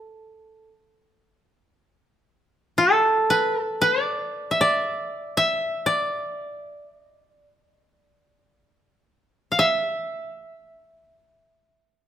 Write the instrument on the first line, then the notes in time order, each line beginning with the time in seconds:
koto
Already playing: A4
2.78 A4
3.30 B4
3.61 A4
3.81 B4
4.02 D5
4.51 E5
4.61 D5
5.37 E5
5.86 D5
6.97 D#5
7.27 D5
7.60 D#5
7.90 D5
9.52 F5
9.59 E5